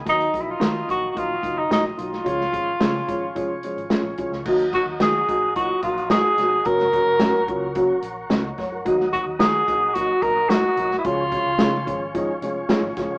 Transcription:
<<
  \new Staff \with { instrumentName = "Tonewheel organ" } { \time 4/4 \key dis \minor \tempo 4 = 109 << { <dis'' dis'''>1 | <cis'' cis'''>1 | <dis'' dis'''>1 | <cis'' cis'''>1 |
<dis'' dis'''>1 | <cis'' cis'''>1 | } \\ { ais''1 | <eis'' gis''>1 | <fis'' ais''>1~ | <fis'' ais''>1~ |
<fis'' ais''>1 | <eis'' gis''>1 | } >> }
  \new Staff \with { instrumentName = "Clean electric guitar" } { \time 4/4 \key dis \minor r4 <dis' fis' ais'>8 r4. <dis' fis' ais'>8 r8 | r4 <cis' eis' gis'>8 r4. <cis' eis' gis'>8 r8 | r4 <dis' fis' ais'>8 r4. <dis' fis' ais'>8 r8 | r4 <cis' fis' ais'>8 r4. <cis' fis' ais'>8 r8 |
r4 <dis' fis' ais'>8 r4. <dis' fis' ais'>8 r8 | r4 <cis' eis' gis'>8 r4. <cis' eis' gis'>8 r8 | }
  \new Staff \with { instrumentName = "Tenor saxophone" } { \time 4/4 \key dis \minor dis'8~ dis'32 e'32 eis'8. fis'16. fis'32 eis'8. dis'16 dis'8 eis'8~ | eis'2. r4 | r8 fis'8 gis'4 fis'8 eis'8 gis'4 | ais'2 r2 |
r8 fis'8 gis'4 fis'8 ais'8 fis'8.~ fis'32 e'32 | eis'2 r2 | }
  \new Staff \with { instrumentName = "Upright piano" } { \time 4/4 \key dis \minor r1 | r1 | r1 | r2. dis''8 cis''16 ais'16~ |
ais'16 r2. r8. | r1 | }
  \new Staff \with { instrumentName = "Upright piano" } { \time 4/4 \key dis \minor <dis fis ais dis'>16 r16 <dis fis ais dis'>16 r16 <dis fis ais dis'>16 r16 <dis fis ais dis'>16 r16 <dis fis ais dis'>16 r16 <dis fis ais dis'>16 r16 <dis fis ais dis'>16 r16 <dis fis ais dis'>16 r16 | <eis gis cis' eis'>16 r16 <eis gis cis' eis'>16 r16 <eis gis cis' eis'>16 r16 <eis gis cis' eis'>16 r16 <eis gis cis' eis'>16 r16 <eis gis cis' eis'>16 r16 <eis gis cis' eis'>16 r16 <eis gis cis' eis'>16 r16 | <fis ais dis' fis'>16 r16 <fis ais dis' fis'>16 r16 <fis ais dis' fis'>16 r16 <fis ais dis' fis'>16 r16 <fis ais dis' eis'>16 r16 <fis ais dis' fis'>16 r16 <fis ais dis' fis'>16 r16 <fis ais dis' fis'>16 r16 | <fis ais cis' fis'>16 r16 <fis ais cis' fis'>16 r16 <fis ais cis' fis'>16 r16 <fis ais cis' eis'>16 r16 <fis ais cis' fis'>16 r4. r16 |
<fis ais dis' fis'>16 r16 <fis ais dis'>16 r16 <fis ais dis' fis'>16 r16 <fis ais dis' fis'>16 r16 <fis ais dis' fis'>16 r16 <fis ais dis' fis'>16 r16 <fis ais dis' fis'>16 r16 <fis ais dis' fis'>16 r16 | <eis gis cis' eis'>16 r16 <eis gis cis' eis'>16 r16 <eis gis cis' dis'>16 r16 <eis gis cis' eis'>16 r16 <eis gis cis' dis'>16 r16 <eis gis cis' eis'>16 r16 <eis gis cis' dis'>16 r16 <eis gis cis' eis'>16 r16 | }
  \new Staff \with { instrumentName = "Fingered electric bass" } { \clef bass \time 4/4 \key dis \minor dis,8 ais,,8 dis8 ais,,8 ais,,8 fis,,8 ais,,8 b,,8 | cis,8 gis,,8 cis8 r8 eis,,8. gis,,16 r16 ais,,16 b,,16 cis,16 | dis,8. dis,16 dis8 ais,,4 ais,,4 eis,,8 | fis,,8. fis,,16 fis,8 cis,4 ais,,8 cis,8 fis,8 |
dis,8. dis,16 dis8 ais,,4 ais,,4 b,,8 | cis,8. cis,16 cis8 gis,,4 eis,,8 r16 gis,,16 fis,,16 eis,,16 | }
  \new DrumStaff \with { instrumentName = "Drums" } \drummode { \time 4/4 <hh bd>16 hh16 <hh bd>8 <hh sn>8 <hh bd>8 <hh bd>8 <hh bd>8 <hh sn>8 hh16 sn16 | <hh bd>16 sn16 <hh bd>8 <hh sn>8 <hh bd>8 <hh bd>8 hh16 hh16 <hh sn>8 <hh bd>16 sn16 | <cymc bd>16 hh16 <hh bd>8 <hh sn>8 <hh bd>8 <hh bd>8 <hh bd>16 hh16 <hh sn>8 <hh sn>8 | <hh bd>16 <hh sn>16 <hh bd>8 <hh sn>8 <hh bd>8 <hh bd>8 hh8 <hh sn>8 <hh bd sn>8 |
<hh bd>16 sn16 <hh bd>8 <hh sn>8 <hh bd>8 <hh bd>8 <hh bd>8 <hh sn>8 hh16 sn16 | <hh bd>8 <hh bd>8 <hh sn>8 <hh bd>8 <hh bd>8 hh8 <hh sn>8 <hh bd sn>8 | }
>>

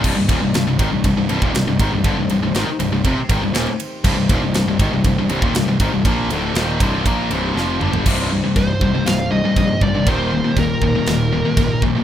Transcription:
<<
  \new Staff \with { instrumentName = "Lead electric guitar" } { \time 4/4 \key c \minor \tempo 4 = 120 r1 | r1 | r1 | r1 |
r4 c''4 f''8 ees''4 d''8 | c''4 bes'2~ bes'8 r8 | }
  \new Staff \with { instrumentName = "String section" } { \time 4/4 \key c \minor << { <c' c''>1~ | <c' c''>1~ | <c' c''>1~ | <c' c''>1 |
<c' c''>1 | <bes bes'>1 | } \\ { <ees g'>1~ | <ees g'>1~ | <ees g'>1~ | <ees g'>1 |
<ees g'>1~ | <ees g'>1 | } >> }
  \new Staff \with { instrumentName = "Distorted electric guitar" } { \clef bass \time 4/4 \key c \minor <c, g,>16 <c, g,>16 <ees, bes,>16 <c, g,>16 <c, g,>16 <c, g,>16 <aes, ees>16 <c, g,>16 <c, g,>16 <c, g,>16 <c, g,>16 <ees, bes,>16 <c, g,>16 <c, g,>16 <aes, ees>16 <c, g,>16 | <g, d>16 <c, g,>16 <c, g,>16 <c, g,>16 <aes, ees>16 r16 <c, g,>16 <c, g,>16 <f, c>16 r16 <aes, ees>16 <c, g,>16 <ees, bes,>16 r8. | <c, g,>16 <c, g,>16 <ees, bes,>16 <c, g,>16 <c, g,>16 <c, g,>16 <aes, ees>16 <c, g,>16 <c, g,>16 <c, g,>16 <c, g,>16 <ees, bes,>16 <c, g,>16 <c, g,>16 <aes, ees>16 <c, g,>16 | <bes, f bes>8 <d, a, d>8 <ees, bes, ees>8 <c, g, c>8 <bes, f bes>8 <c, g, c>8 <f, c f>8 <g, d g>8 |
<c, g, c>8 <c, g,>16 <c, g,>16 <c, g,>8 <c, g,>16 <c, g,>16 <c, g,>8 <c, g,>16 <c, g,>16 <c, g,>8 <c, g,>16 <c, g,>16 | <ees, bes, ees>8 <ees, bes,>16 <ees, bes,>16 <ees, bes,>8 <ees, bes,>16 <ees, bes,>16 <ees, bes,>8 <ees, bes,>16 <ees, bes,>16 <ees, bes,>8 <ees, bes,>16 <ees, bes,>16 | }
  \new Staff \with { instrumentName = "Distorted electric guitar" } { \clef bass \time 4/4 \key c \minor <c, g,>16 <c, g,>16 <ees, bes,>16 <c, g,>16 <c, g,>16 <c, g,>16 <aes, ees>16 <c, g,>16 <c, g,>16 <c, g,>16 <c, g,>16 <ees, bes,>16 <c, g,>16 <c, g,>16 <aes, ees>16 <c, g,>16 | <g, d>16 <c, g,>16 <c, g,>16 <c, g,>16 <aes, ees>16 r16 <c, g,>16 <c, g,>16 <f, c>16 r16 <aes, ees>16 <c, g,>16 <ees, bes,>16 r8. | <c, g,>16 <c, g,>16 <ees, bes,>16 <c, g,>16 <c, g,>16 <c, g,>16 <aes, ees>16 <c, g,>16 <c, g,>16 <c, g,>16 <c, g,>16 <ees, bes,>16 <c, g,>16 <c, g,>16 <aes, ees>16 <c, g,>16 | <bes, f bes>8 <d, a, d>8 <ees, bes, ees>8 <c, g, c>8 <bes, f bes>8 <c, g, c>8 <f, c f>8 <g, d g>8 |
<c, g, c>8 <c, g,>16 <c, g,>16 <c, g,>8 <c, g,>16 <c, g,>16 <c, g,>8 <c, g,>16 <c, g,>16 <c, g,>8 <c, g,>16 <c, g,>16 | <ees, bes, ees>8 <ees, bes,>16 <ees, bes,>16 <ees, bes,>8 <ees, bes,>16 <ees, bes,>16 <ees, bes,>8 <ees, bes,>16 <ees, bes,>16 <ees, bes,>8 <ees, bes,>16 <ees, bes,>16 | }
  \new Staff \with { instrumentName = "Picked electric bass" } { \clef bass \time 4/4 \key c \minor c,,16 c,,16 ees,,16 c,,16 c,,16 c,,16 aes,,16 c,,16 c,,16 c,,16 c,,16 ees,,16 c,,16 c,,16 aes,,16 c,,16 | g,,16 c,,16 c,,16 c,,16 aes,,16 r16 c,,16 c,,16 f,,16 r16 aes,,16 c,,16 ees,,16 r8. | c,,16 c,,16 ees,,16 c,,16 c,,16 c,,16 aes,,16 c,,16 c,,16 c,,16 c,,16 ees,,16 c,,16 c,,16 aes,,16 c,,16 | bes,,8 d,,8 ees,,8 c,,8 bes,,8 c,,8 f,,8 g,,8 |
c,,4 c,,8 c,,8 c,,4 bes,,8 g,,8 | ees,,4 ees,,8 ees,,8 ees,,4 c,,8 bes,,8 | }
  \new DrumStaff \with { instrumentName = "Drums" } \drummode { \time 4/4 <cymc bd>8 <bd cymr>8 <cymr sn>8 <bd cymr>8 <bd cymr>8 cymr16 bd16 <cymr sn>8 <bd cymr>8 | <bd cymr>8 cymr8 <cymr sn>8 cymr8 <bd cymr>8 <bd cymr>8 <cymr sn>8 cymr8 | <cymc bd>8 <bd cymr>8 <cymr sn>8 <bd cymr>8 <bd cymr>8 cymr16 bd16 <cymr sn>8 <bd cymr>8 | <bd cymr>8 cymr8 <cymr sn>8 <bd cymr>8 <bd cymr>8 cymr8 sn8 toml16 tomfh16 |
<cymc bd>4 <cymc bd>8 bd8 <cymc sn>4 <cymc bd>8 bd8 | <cymc bd>4 <cymc bd>8 bd8 <cymc sn>4 <cymc bd>8 bd8 | }
>>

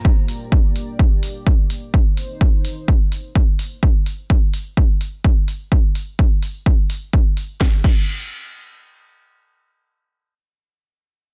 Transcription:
<<
  \new Staff \with { instrumentName = "Analog synth pad" } { \time 4/4 \key c \dorian \tempo 4 = 127 << { <g' d''>1 | <ees' c''>1 | r1 | r1 |
r1 | r1 | } \\ { bes1~ | bes1 | r1 | r1 |
r1 | r1 | } >> }
  \new DrumStaff \with { instrumentName = "Drums" } \drummode { \time 4/4 bd8 hho8 bd8 hho8 bd8 hho8 bd8 hho8 | bd8 hho8 bd8 hho8 bd8 hho8 bd8 hho8 | bd8 hho8 bd8 hho8 bd8 hho8 bd8 hho8 | bd8 hho8 bd8 hho8 bd8 hho8 bd8 hho8 |
<bd sn>8 <cymc bd>8 r4 r4 r4 | r4 r4 r4 r4 | }
>>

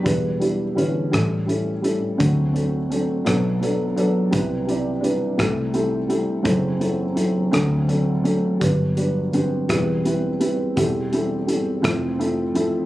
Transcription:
<<
  \new Staff \with { instrumentName = "Felt piano" } { \time 6/8 \key a \dorian \tempo 4. = 56 << { <g d' e' b'>8 <g d' e' g'>8 <d g e' b'>8 <g cis' e' a'>8 <g cis' e' a'>8 <g cis' e' a'>8 | <fis c' d' a'>8 <fis c' d' a'>8 <fis c' d' a'>8 <fis b d' a'>8 <fis b d' a'>8 <fis b d' a'>8 | <g c' e' b'>8 <g c' e' d''>8 <g b e' b'>8 <g c' e' a'>8 <g c' e' a'>8 <g c' e' a'>8 | <fis c' e' a'>8 <fis c' e' a'>8 <fis c' e' a'>8 <fis c' d' a'>8 <fis c' d' a'>8 <fis c' d' a'>8 |
<g d' fis' b'>8 <g d' fis' b'>8 <d d' fis' b'>8 <g c' e' b'>8 <g c' e' b'>8 <g c' e' b'>8 | <g c' e' a'>8 <g c' e' a'>8 <g c' e' a'>8 <f c' e' a'>8 <f c' e' a'>8 <f c' e' a'>8 | } \\ { r4 cis'4. r8 | fis'4 r2 | r4 d'8 r4. | r2. |
r4 c'4. r8 | g'4 r2 | } >> }
  \new Staff \with { instrumentName = "Felt piano" } { \clef bass \time 6/8 \key a \dorian << { <g b>4 <e g>4. r8 | a4. r4. | <g b>4. <g a>4. | r2. |
<fis b>4 g4. r8 | r2. | } \\ { <e, e>4. <a,, a,>4. | <d, d>4. <b,, b,>4. | <c, c>4. <c, c>4. | <fis,, fis,>4. <d, d>4. |
<g,, g,>4. <e, e>4. | <e, e>4. <f,, f,>4. | } >> }
  \new Staff \with { instrumentName = "Fingered electric bass" } { \clef bass \time 6/8 \key a \dorian e,,4. a,,4. | d,4. b,,4. | c,4. c,4. | fis,,4. d,4. |
g,,4. e,,4. | e,,4. f,,4. | }
  \new DrumStaff \with { instrumentName = "Drums" } \drummode { \time 6/8 <hh bd>8 hh8 hh8 <hh bd ss>8 hh8 hh8 | <hh bd>8 hh8 hh8 <hh bd ss>8 hh8 hh8 | <hh bd>8 hh8 hh8 <hh bd ss>8 hh8 hh8 | <hh bd>8 hh8 hh8 <hh ss>8 hh8 hh8 |
<hh bd>8 hh8 hh8 <hh bd ss>8 hh8 hh8 | <hh bd>8 hh8 hh8 <hh bd ss>8 hh8 hh8 | }
>>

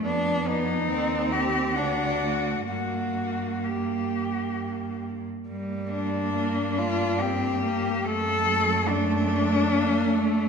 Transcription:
<<
  \new Staff \with { instrumentName = "Cello" } { \time 3/4 \key g \minor \tempo 4 = 70 r8 ees'4 g'8 fis'4 | fis'4 g'4. r8 | r8 d'4 f'8 g'4 | a'4 d'2 | }
  \new Staff \with { instrumentName = "Cello" } { \time 3/4 \key g \minor b4 c'4 d'4 | bes2~ bes8. r16 | bes2. | a2. | }
  \new Staff \with { instrumentName = "Cello" } { \time 3/4 \key g \minor d'8 b8 c'4 d'8 a8 | bes2~ bes8 r8 | g4 bes8 d'8 c'8 bes8 | a8 fis8 a4 bes8 a8 | }
  \new Staff \with { instrumentName = "Cello" } { \clef bass \time 3/4 \key g \minor f,4 ees,4 d,4 | g,2~ g,8. r16 | g,2. | fis,2. | }
>>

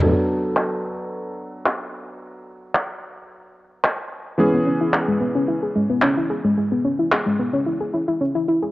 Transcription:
<<
  \new Staff \with { instrumentName = "Synth arpeggio sound" } { \time 4/4 \key b \dorian \tempo 4 = 110 r1 | r1 | gis16 b16 cis'16 e'16 gis'16 gis16 b16 cis'16 e'16 gis'16 gis16 b16 cis'16 e'16 gis'16 gis16 | gis16 b16 cis'16 e'16 gis'16 gis16 b16 cis'16 e'16 gis'16 e'16 e'16 cis'16 e'16 e'16 gis'16 | }
  \new Staff \with { instrumentName = "Electric grand piano" } { \time 4/4 \key b \dorian <fis b d' a'>1~ | <fis b d' a'>1 | <e b cis' gis'>1~ | <e b cis' gis'>2. r4 | }
  \new DrumStaff \with { instrumentName = "Drums" } \drummode { \time 4/4 r4 hc4 r4 hc4 | r4 hc4 r4 hc4 | r4 hc4 r4 hc4 | r4 hc4 r4 r4 | }
>>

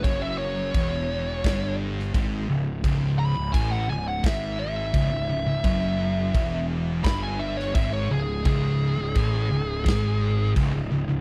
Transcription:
<<
  \new Staff \with { instrumentName = "Lead electric guitar" } { \time 4/4 \key cis \minor \tempo 4 = 86 cis''16 e''16 cis''2 r4. | r8 b''8 gis''16 fis''16 gis''16 fis''16 e''8 e''4.~ | e''4. r8 b''16 gis''16 e''16 cis''16 e''16 cis''16 gis'8 | gis'2. r4 | }
  \new Staff \with { instrumentName = "Distorted electric guitar" } { \clef bass \time 4/4 \key cis \minor fis,4 e,4 g,4 gis,8 cis,8 | cis,8. cis,16 a,8 cis,8 gis,4 cis,16 cis,16 cis,16 cis,16 | fis,4 e,4 g,4 gis,8 cis,8 | cis,8. cis,16 a,8 cis,8 gis,4 cis,16 cis,16 cis,16 cis,16 | }
  \new Staff \with { instrumentName = "Distorted electric guitar" } { \clef bass \time 4/4 \key cis \minor fis,4 e,4 g,4 gis,8 cis,8 | cis,8. cis,16 a,8 cis,8 gis,4 cis,16 cis,16 cis,16 cis,16 | fis,4 e,4 g,4 gis,8 cis,8 | cis,8. cis,16 a,8 cis,8 gis,4 cis,16 cis,16 cis,16 cis,16 | }
  \new Staff \with { instrumentName = "Picked electric bass" } { \clef bass \time 4/4 \key cis \minor fis,,4 e,,4 g,,4 gis,,8 cis,,8 | cis,,8. cis,,16 a,,8 cis,,8 gis,,4 cis,,16 cis,,16 cis,,16 cis,,16 | fis,,4 e,,4 g,,4 gis,,8 cis,,8 | cis,,8. cis,,16 a,,8 cis,,8 gis,,4 cis,,16 cis,,16 cis,,16 cis,,16 | }
  \new DrumStaff \with { instrumentName = "Drums" } \drummode { \time 4/4 <cymc bd>4 <cymc bd>4 <cymc bd sn>8. sn16 <cymc bd>4 | <cymc bd>4 <cymc bd>4 <cymc bd sn>4 <cymc bd>4 | <cymc bd>4 <cymc bd>4 <cymc bd sn>8. sn16 <cymc bd>4 | <cymc bd>4 <cymc bd>4 <cymc bd sn>4 <cymc bd>4 | }
>>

